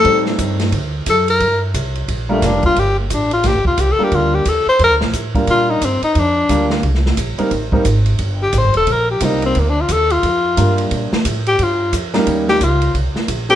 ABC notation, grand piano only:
X:1
M:4/4
L:1/8
Q:"Swing" 1/4=177
K:Gm
V:1 name="Grand piano"
[G,A,CEA]4 z4 | z4 z [G,B,DFB]3 | z6 z [G,B,DFB]- | [G,B,DFB]2 z4 z [G,B,DFB]- |
[G,B,DFB]2 z4 [G,B,DFB]2 | z3 [G,B,CEB] z [G,B,CEB] z2 | z6 [G,B,CEB]2 | z6 [G,B,DFB]2- |
[G,B,DFB] z6 [G,B,^CEB]- | [G,B,^CEB]2 z4 z [^F,A,=CDA] |]